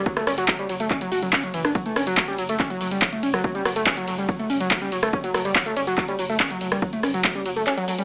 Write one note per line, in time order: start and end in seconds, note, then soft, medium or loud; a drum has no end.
0.06 0.10 F#3 medium
0.06 kick loud
0.06 closed hi-hat medium
0.17 0.22 A3 medium
0.17 cross-stick medium
0.17 closed hi-hat medium
0.27 0.37 F#1 loud
0.27 0.31 C#4 medium
0.27 cross-stick medium
0.27 open hi-hat loud
0.27 ride medium
0.38 0.48 F#1 medium
0.38 0.44 F#3 loud
0.38 closed hi-hat medium
0.48 0.54 F#3 medium
0.48 kick loud
0.48 clap loud
0.48 closed hi-hat medium
0.59 0.65 G3 medium
0.59 closed hi-hat medium
0.69 0.79 F#1 loud
0.69 0.73 F#3 medium
0.69 open hi-hat loud
0.69 ride medium
0.80 0.90 F#1 medium
0.80 0.86 A3 medium
0.80 closed hi-hat medium
0.91 0.94 C#4 medium
0.91 kick loud
0.91 clap soft
0.91 closed hi-hat medium
1.01 1.07 F#3 loud
1.01 closed hi-hat medium
1.12 1.22 F#1 loud
1.12 1.17 F#4 medium
1.12 open hi-hat loud
1.12 ride medium
1.22 1.33 F#1 medium
1.22 1.26 F#3 medium
1.22 closed hi-hat medium
1.33 1.39 C#4 loud
1.33 kick loud
1.33 clap loud
1.33 closed hi-hat medium
1.43 1.47 F#3 medium
1.43 closed hi-hat medium
1.54 1.64 F#1 loud
1.54 1.60 E3 medium
1.54 open hi-hat loud
1.54 ride medium
1.65 1.75 F#1 medium
1.65 1.68 D4 medium
1.65 cross-stick medium
1.65 closed hi-hat medium
1.75 1.79 F#3 medium
1.75 kick loud
1.75 closed hi-hat medium
1.86 1.91 A3 medium
1.86 closed hi-hat medium
1.96 2.06 F#1 loud
1.96 2.00 C#4 medium
1.96 cross-stick loud
1.96 open hi-hat loud
1.96 ride medium
2.07 2.17 F#1 medium
2.07 2.13 F#3 loud
2.07 closed hi-hat medium
2.17 2.23 F#3 medium
2.17 kick loud
2.17 clap loud
2.17 closed hi-hat medium
2.28 2.34 G3 medium
2.28 closed hi-hat medium
2.38 2.49 F#1 loud
2.38 2.42 F#3 medium
2.38 open hi-hat loud
2.38 ride medium
2.49 2.59 F#1 medium
2.49 2.55 A3 medium
2.49 closed hi-hat medium
2.60 2.63 C#4 medium
2.60 kick loud
2.60 clap soft
2.60 closed hi-hat medium
2.70 2.76 F#3 loud
2.70 closed hi-hat medium
2.81 2.91 F#1 loud
2.81 2.87 F#3 medium
2.81 open hi-hat loud
2.81 ride medium
2.91 3.02 F#1 medium
2.91 2.97 G3 medium
2.91 closed hi-hat medium
3.02 3.05 F#3 medium
3.02 kick loud
3.02 clap loud
3.02 closed hi-hat medium
3.13 3.18 A3 medium
3.13 closed hi-hat medium
3.23 3.33 F#1 loud
3.23 3.26 C#4 medium
3.23 open hi-hat medium
3.23 ride medium
3.34 3.44 F#1 medium
3.34 3.39 F#3 loud
3.34 cross-stick medium
3.34 closed hi-hat medium
3.44 3.50 F#3 medium
3.44 kick loud
3.44 closed hi-hat medium
3.55 3.60 G3 medium
3.55 closed hi-hat medium
3.65 3.75 F#1 loud
3.65 3.69 F#3 medium
3.65 cross-stick medium
3.65 open hi-hat loud
3.65 ride medium
3.76 3.86 F#1 medium
3.76 3.82 A3 medium
3.76 closed hi-hat medium
3.86 3.90 C#4 medium
3.86 kick loud
3.86 clap loud
3.86 closed hi-hat medium
3.97 4.03 F#3 loud
3.97 closed hi-hat medium
4.08 4.18 F#1 loud
4.08 4.13 F#3 medium
4.08 open hi-hat medium
4.08 ride medium
4.18 4.28 F#1 medium
4.18 4.24 G3 medium
4.18 closed hi-hat medium
4.29 4.32 F#3 medium
4.29 kick loud
4.29 closed hi-hat medium
4.39 4.45 A3 medium
4.39 closed hi-hat medium
4.50 4.60 F#1 loud
4.50 4.53 C#4 medium
4.50 open hi-hat loud
4.50 ride medium
4.60 4.71 F#1 medium
4.60 4.66 F#3 loud
4.60 closed hi-hat medium
4.71 4.77 F#3 medium
4.71 kick loud
4.71 clap loud
4.71 closed hi-hat medium
4.82 4.87 G3 medium
4.82 closed hi-hat medium
4.92 5.02 F#1 loud
4.92 4.95 F#3 medium
4.92 open hi-hat medium
4.92 ride medium
5.03 5.13 F#1 medium
5.03 5.08 A3 medium
5.03 cross-stick medium
5.03 closed hi-hat medium
5.13 5.17 C#4 medium
5.13 kick loud
5.13 closed hi-hat medium
5.24 5.29 F#3 loud
5.24 closed hi-hat medium
5.34 5.44 F#1 loud
5.34 5.40 F#3 medium
5.34 cross-stick medium
5.34 open hi-hat loud
5.34 ride medium
5.45 5.55 F#1 medium
5.45 5.51 G3 medium
5.45 closed hi-hat medium
5.55 5.59 F#3 medium
5.55 kick loud
5.55 clap loud
5.55 closed hi-hat medium
5.66 5.72 A3 medium
5.66 closed hi-hat medium
5.76 5.87 F#1 loud
5.76 5.80 C#4 medium
5.76 open hi-hat medium
5.76 ride medium
5.87 5.97 F#1 medium
5.87 5.93 F#3 loud
5.87 closed hi-hat medium
5.98 6.03 F#3 medium
5.98 kick loud
5.98 clap soft
5.98 closed hi-hat medium
6.08 6.14 G3 medium
6.08 closed hi-hat medium
6.19 6.29 F#1 loud
6.19 6.22 F#3 medium
6.19 open hi-hat loud
6.19 ride medium
6.29 6.40 F#1 medium
6.29 6.35 A3 medium
6.29 closed hi-hat medium
6.40 6.43 C#4 medium
6.40 kick loud
6.40 clap loud
6.40 closed hi-hat medium
6.51 6.56 F#3 loud
6.51 closed hi-hat medium
6.61 6.71 F#1 loud
6.61 6.67 F#3 medium
6.61 open hi-hat medium
6.61 ride medium
6.72 6.82 F#1 medium
6.72 6.77 G3 medium
6.72 cross-stick medium
6.72 closed hi-hat medium
6.82 6.86 F#3 medium
6.82 kick loud
6.82 closed hi-hat medium
6.93 6.99 A3 medium
6.93 closed hi-hat medium
7.03 7.13 F#1 loud
7.03 7.07 C#4 medium
7.03 cross-stick medium
7.03 open hi-hat loud
7.03 ride medium
7.14 7.24 F#1 medium
7.14 7.20 F#3 loud
7.14 closed hi-hat medium
7.24 7.30 F#3 medium
7.24 kick loud
7.24 clap loud
7.24 closed hi-hat medium
7.35 7.41 G3 medium
7.35 closed hi-hat medium
7.46 7.56 F#1 loud
7.46 7.49 F#3 medium
7.46 open hi-hat medium
7.46 ride medium
7.56 7.67 F#1 medium
7.56 7.62 A3 medium
7.56 closed hi-hat medium
7.67 7.70 C#4 medium
7.67 clap soft
7.67 closed hi-hat medium
7.77 7.83 F#3 loud
7.77 closed hi-hat medium
7.88 7.94 F#3 medium
7.88 open hi-hat loud
7.88 ride medium
7.98 8.04 G3 medium
7.98 closed hi-hat medium